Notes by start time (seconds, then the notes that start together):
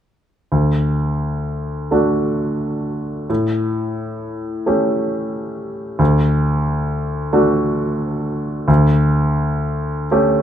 0.52 D2
1.91 A3 D4 F#4
3.30 A2
4.66 A3 C#4 G4
5.99 D2
7.33 A3 D4 F#4
8.68 D2
10.11 A3 C#4 G4